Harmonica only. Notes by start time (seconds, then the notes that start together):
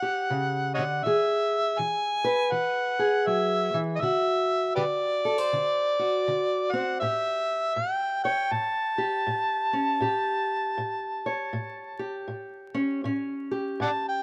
Already playing: F#5
0.74 C#5 D#5 F#5
1.04 E5
1.78 G#5
2.52 F#5
3.27 E5
3.96 D#5
4.01 E5
4.75 G4 B4 D5
6.71 F#5
7.00 E5
7.74 G5
8.23 G5
8.52 A5
13.82 D5 F#5 A5
14.08 G5